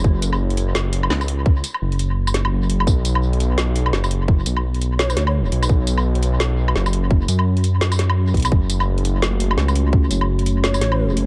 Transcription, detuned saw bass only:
0.04 F#1
1.11 C#2
1.81 F#1
2.52 F#1
2.87 B1
3.93 F#1
4.46 B1
5.16 D2
5.52 B1
5.69 B1
6.76 F#1
7.28 F#2
7.81 F#2
8.34 B1
8.52 F#1
9.57 C#2
10.11 F#1
10.81 A1
11.16 F#1

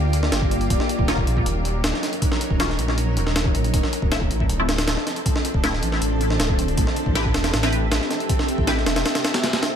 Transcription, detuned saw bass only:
Already playing: D2
0.32 G1
0.70 D#1
0.99 D#1
1.27 A#1
1.46 D#1
1.84 D#1
2.51 D#1
2.79 A#1
3.17 D#1
3.26 D#1
3.55 A#1
3.74 D1
4.02 D1
4.31 A1
4.50 D1
4.88 D1
5.54 D1
5.83 A1
6.02 A1
6.40 D1
6.78 A1
7.06 A1
7.35 E1
7.54 A1
7.91 A1
8.58 A1
8.87 E1

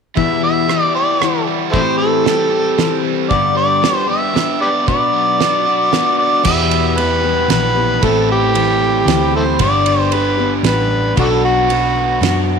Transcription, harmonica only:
0.17 E5
0.43 E5
0.96 D5
1.72 E4 A4 C5
1.98 A4
3.30 D5
3.57 D5
4.10 E5
4.61 G4 B4 D5
4.88 D5
6.18 D5
6.44 E5
6.98 B4
7.51 B4
8.04 A4
8.32 G4
9.36 E4 A4 C5
9.62 D5
10.00 C5
10.14 B4
10.67 B4
11.20 D4 F#4 A4
11.45 F#4

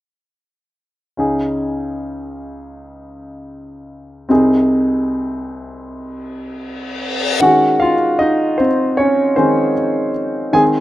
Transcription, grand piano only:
1.17 C#2 C#3 C#4 D#4 G#4
4.29 C2 C3 C4 D#4 G#4
7.40 D#3 G#3 C#4 F#4 F#5
7.80 F4 F5
8.19 D#4 D#5
8.58 C4 C5
8.97 C#4 C#5
9.36 D#3 G#3 C4 C#4 C5
10.53 D#3 G#3 C4 G#4 G#5

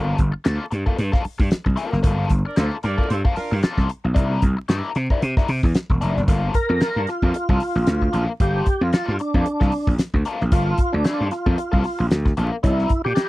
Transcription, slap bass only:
Already playing: G1
0.19 G1
0.46 D2
0.72 G2
0.99 G2
1.25 muted slap bass stroke
1.39 G2
1.52 muted slap bass stroke
1.66 C2
1.93 F#1
2.04 G1
2.30 G1
2.57 D2
2.84 G2
3.10 G2
3.37 muted slap bass stroke
3.52 G2
3.63 muted slap bass stroke
3.78 C2
4.05 B1
4.16 C2
4.43 C2
4.69 G2
4.96 C3
5.22 C3
5.49 C3
5.64 E2
5.90 E1
6.02 F1
6.17 F#1
6.28 G1
6.69 F2
6.96 G2
7.22 F2
7.49 C2
7.75 A#1
7.87 D2
8.14 A#1
8.40 G1
8.81 F2
8.93 muted slap bass stroke
9.08 G2
9.34 F2
9.61 C2
9.88 A#1
10.14 D2
10.42 A#1
10.52 G1
10.94 D2
11.21 G2
11.46 F2
11.73 C2
12.00 A#1
12.11 D2
12.37 A#1
12.64 C2
13.06 A#2
13.17 muted slap bass stroke

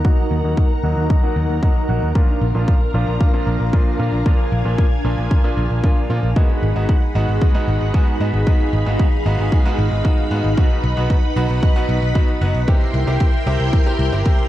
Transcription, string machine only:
Already playing: D#4 A#4 F#5 A#5
2.15 D4 F5 A#5
4.26 G#5
6.36 D#4 G#4 F#5 B5
8.47 F5
10.58 B4 F#5
12.68 E4 A#4 G5 C6

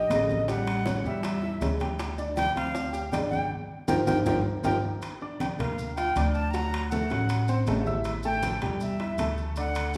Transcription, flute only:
Already playing: D#5
0.49 F#5
1.07 E5
2.36 G5
2.56 F5
3.12 G5
3.30 G5
3.88 G5
4.06 G5
4.26 G5
4.65 G5
5.40 G5
5.59 F5
5.96 G5
6.33 A5
6.51 A#5
6.90 F#5
8.25 G5
8.81 E5
9.59 F#5

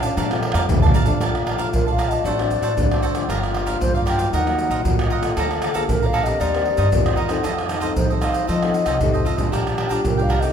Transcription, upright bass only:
0.17 A#2
0.54 F2
0.69 A#1
1.20 A#1
1.72 A#1
2.24 A1
2.61 A1
2.77 D2
3.29 G1
3.80 G2
4.33 D#2
4.70 A#1
4.85 D#2
5.37 D2
5.89 A#1
6.41 D#2
6.78 G2
6.93 E2
7.45 F2
7.97 F3
8.49 F3
8.86 C2
9.01 F2
9.52 A#1
10.04 C2

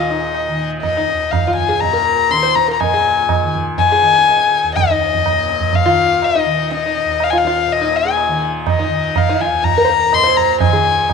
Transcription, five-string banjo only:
Already playing: F4
0.10 D#4
0.97 D#4
1.47 F4
1.68 G#4
1.93 A#4
2.43 C5
2.68 A#4
2.94 G#4
3.92 G#4
4.90 D#4
5.86 F4
6.35 D#4
6.86 D#4
7.33 F4
7.47 F4
7.81 D#4
8.05 G#4
8.79 D#4
9.29 F4
9.77 A#4
9.84 C5
9.89 A#4
10.23 C5
10.73 G#4

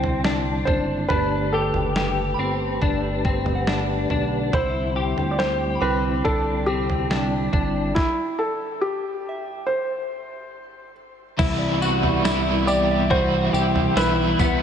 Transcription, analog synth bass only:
Already playing: C2
0.67 F#1
1.10 G1
1.75 F#1
2.38 G1
2.82 G1
4.10 B1
4.53 C2
5.17 D2
5.82 C2
6.25 C2
7.53 G1
11.39 C2
13.53 C2
13.96 B1
14.39 C2

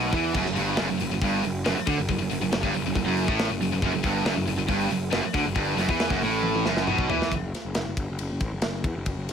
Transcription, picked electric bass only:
Already playing: B1
0.13 E2
0.35 F#1
0.47 F#1
0.58 G1
0.80 F#1
0.92 F#1
1.02 F#1
1.13 F#1
1.21 G1
1.45 F#1
1.67 F#1
1.77 muted picked electric bass stroke
1.87 D2
1.98 F#1
2.09 F#1
2.20 F#1
2.31 F#1
2.42 F#1
2.53 F#1
2.64 G1
2.77 F#1
2.87 F#1
2.95 F#1
3.07 F#1
3.28 A1
3.50 F#1
3.61 F#1
3.73 F#1
3.83 F#1
3.94 F#1
4.04 G1
4.25 F#1
4.37 F#1
4.48 F#1
4.56 F#1
4.69 G1
4.90 F#1
5.12 F#1
5.23 muted picked electric bass stroke
5.34 D2
5.46 F#1
5.56 G1
5.77 F#1
5.89 E2
6.11 F#1
6.23 A1
6.66 F#1
6.88 B1
7.10 E2
7.32 F#1
7.55 muted picked electric bass stroke
7.65 F#1
7.76 F#1
7.87 F#1
7.97 G1
8.10 F#1
8.20 F#1
8.32 F#1
8.41 A1
8.52 F#1
8.64 F#1
8.84 E2
8.96 F#1
9.17 F#1
9.30 F#1

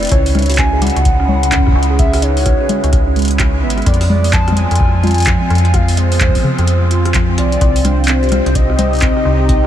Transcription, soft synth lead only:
0.12 C#5
0.35 C#5
0.59 G#5
0.82 F#5
1.99 E5
2.22 C#5
3.63 E5
3.86 D5
4.10 D5
4.33 A5
4.57 G#5
5.74 F5
5.97 C5
7.38 D5
7.85 C5
8.08 C5
8.55 D#5

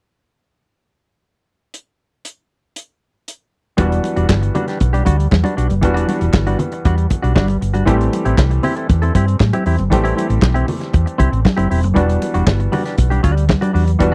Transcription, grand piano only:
3.77 E3 G3 B3 D4 F#4
5.81 E3 G3 B3 D4 F#4
7.85 E3 G3 A3 C4 G4
9.90 E3 G3 A3 C4 G4
11.94 E3 G3 B3 D4 F#4
13.99 E3 G3 B3 D4 F#4

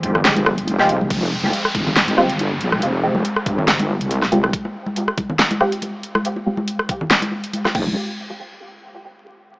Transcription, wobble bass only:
0.03 G1
0.68 F1
0.89 C2
1.10 F1
1.75 G1
2.61 A#1
2.82 F1
3.46 G1
4.01 C2
7.75 F1

